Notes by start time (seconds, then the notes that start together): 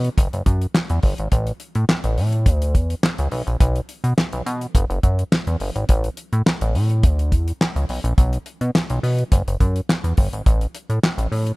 0.04 closed hi-hat
0.18 F#1, kick, closed hi-hat
0.33 F#1, closed hi-hat
0.46 F#2, kick, closed hi-hat
0.62 closed hi-hat
0.74 snare, clap
0.90 E2, closed hi-hat
1.03 G1, kick, open hi-hat
1.18 G#1, closed hi-hat
1.32 A1, kick, closed hi-hat
1.47 closed hi-hat
1.60 closed hi-hat
1.75 A2, closed hi-hat
1.89 snare, clap
2.04 A1, closed hi-hat
2.17 A2, open hi-hat
2.33 closed hi-hat
2.46 D2, kick, closed hi-hat
2.62 closed hi-hat
2.74 E2, kick, closed hi-hat
2.90 closed hi-hat
3.03 snare, clap
3.18 C#2, closed hi-hat
3.32 B1, open hi-hat
3.47 A#1, closed hi-hat
3.60 B1, kick, closed hi-hat
3.76 closed hi-hat
3.89 closed hi-hat
4.04 B2, closed hi-hat
4.18 snare, clap
4.33 B1, closed hi-hat
4.46 B2, closed hi-hat
4.61 closed hi-hat
4.75 F#1, kick, closed hi-hat
4.90 F#1, closed hi-hat
5.03 F#2, kick, closed hi-hat
5.19 closed hi-hat
5.32 snare, clap
5.47 E2, closed hi-hat
5.60 G1, open hi-hat
5.75 G#1, closed hi-hat
5.89 A1, kick, closed hi-hat
6.04 closed hi-hat
6.17 closed hi-hat
6.33 A2, closed hi-hat
6.46 snare, clap
6.61 A1, closed hi-hat
6.75 A2, open hi-hat
6.90 closed hi-hat
7.03 D2, kick, closed hi-hat
7.19 closed hi-hat
7.32 E2, kick, closed hi-hat
7.48 closed hi-hat
7.61 snare, clap
7.76 C#2, closed hi-hat
7.89 B1, open hi-hat
8.04 A#1, closed hi-hat
8.18 B1, kick, closed hi-hat
8.33 closed hi-hat
8.46 closed hi-hat
8.61 B2, closed hi-hat
8.75 snare, clap
8.90 B1, closed hi-hat
9.03 B2, open hi-hat
9.19 closed hi-hat
9.32 F#1, kick, closed hi-hat
9.47 F#1, closed hi-hat
9.60 F#2, kick, closed hi-hat
9.76 closed hi-hat
9.89 snare, clap
10.04 E2, closed hi-hat
10.17 G1, kick, open hi-hat
10.33 G#1, closed hi-hat
10.46 A1, kick, closed hi-hat
10.61 closed hi-hat
10.75 closed hi-hat
10.90 A2, closed hi-hat
11.03 snare, clap
11.18 A1, closed hi-hat
11.32 A2, open hi-hat
11.47 closed hi-hat